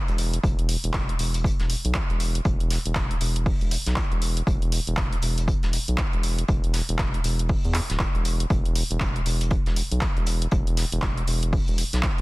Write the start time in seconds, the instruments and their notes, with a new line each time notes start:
0.08 analog synth bass E1, closed hi-hat
0.18 closed hi-hat, open hi-hat
0.34 closed hi-hat
0.44 analog synth bass E1, kick, closed hi-hat
0.59 closed hi-hat
0.69 closed hi-hat, open hi-hat
0.84 analog synth bass E1, closed hi-hat
0.93 kick, snare, clap, closed hi-hat
1.09 closed hi-hat
1.19 analog synth bass E1, closed hi-hat, open hi-hat
1.34 closed hi-hat
1.44 kick, closed hi-hat
1.59 analog synth bass E1, snare, closed hi-hat
1.70 closed hi-hat, open hi-hat
1.85 analog synth bass B1, closed hi-hat
1.94 kick, snare, clap, closed hi-hat
2.10 analog synth bass E1, closed hi-hat
2.20 closed hi-hat, open hi-hat
2.35 closed hi-hat
2.45 analog synth bass E1, kick, closed hi-hat
2.60 closed hi-hat
2.70 snare, closed hi-hat, open hi-hat
2.86 analog synth bass E1, closed hi-hat
2.95 kick, snare, clap, closed hi-hat
3.11 closed hi-hat
3.21 analog synth bass E1, closed hi-hat, open hi-hat
3.36 closed hi-hat
3.46 kick, open hi-hat
3.61 analog synth bass E1, closed hi-hat
3.71 closed hi-hat, open hi-hat
3.86 analog synth bass B1, snare, closed hi-hat
3.96 kick, snare, clap, closed hi-hat
4.12 analog synth bass E1, closed hi-hat
4.22 closed hi-hat, open hi-hat
4.37 closed hi-hat
4.47 analog synth bass E1, kick, closed hi-hat
4.62 closed hi-hat
4.72 closed hi-hat, open hi-hat
4.87 analog synth bass E1, closed hi-hat
4.97 kick, snare, clap, closed hi-hat
5.13 closed hi-hat
5.22 analog synth bass E1, closed hi-hat, open hi-hat
5.38 closed hi-hat
5.48 kick, closed hi-hat
5.63 analog synth bass E1, snare, closed hi-hat
5.73 closed hi-hat, open hi-hat
5.88 analog synth bass B1, closed hi-hat
5.98 kick, snare, clap, closed hi-hat
6.13 analog synth bass E1, closed hi-hat
6.23 closed hi-hat, open hi-hat
6.39 closed hi-hat
6.48 analog synth bass E1, kick, closed hi-hat
6.64 closed hi-hat
6.73 snare, closed hi-hat, open hi-hat
6.89 analog synth bass E1, closed hi-hat
6.98 kick, snare, clap, closed hi-hat
7.14 closed hi-hat
7.24 analog synth bass E1, closed hi-hat, open hi-hat
7.39 closed hi-hat
7.49 kick, open hi-hat
7.65 analog synth bass E2, closed hi-hat
7.74 clap, closed hi-hat, open hi-hat
7.90 analog synth bass D1, snare, closed hi-hat
7.99 kick, snare, clap, closed hi-hat
8.15 analog synth bass E1, closed hi-hat
8.25 closed hi-hat, open hi-hat
8.40 closed hi-hat
8.50 analog synth bass E1, kick, closed hi-hat
8.65 closed hi-hat
8.75 closed hi-hat, open hi-hat
8.91 analog synth bass E1, closed hi-hat
9.00 kick, snare, clap, closed hi-hat
9.16 closed hi-hat
9.26 analog synth bass E1, closed hi-hat, open hi-hat
9.41 closed hi-hat
9.50 kick, closed hi-hat
9.66 analog synth bass E1, snare, closed hi-hat
9.76 closed hi-hat, open hi-hat
9.91 analog synth bass B1, closed hi-hat
10.01 kick, snare, clap, closed hi-hat
10.17 analog synth bass E1, closed hi-hat
10.26 closed hi-hat, open hi-hat
10.42 closed hi-hat
10.51 analog synth bass E1, kick, closed hi-hat
10.67 closed hi-hat
10.77 snare, closed hi-hat, open hi-hat
10.92 analog synth bass E1, closed hi-hat
11.02 kick, snare, clap, closed hi-hat
11.17 closed hi-hat
11.27 analog synth bass E1, closed hi-hat, open hi-hat
11.43 closed hi-hat
11.53 kick, open hi-hat
11.68 analog synth bass E1, closed hi-hat
11.78 closed hi-hat, open hi-hat
11.93 analog synth bass B1, snare, closed hi-hat
12.03 kick, snare, clap, closed hi-hat
12.18 analog synth bass E1, closed hi-hat